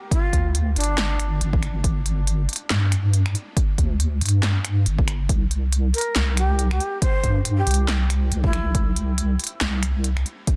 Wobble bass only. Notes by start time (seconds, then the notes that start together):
0.33 D2
0.76 G1
1.41 G1
1.84 G1
2.71 G2
3.78 D2
4.22 G2
4.86 G1
5.29 C2
6.16 C2
7.24 G2
7.67 C2
8.31 C2
8.75 C2
9.61 C2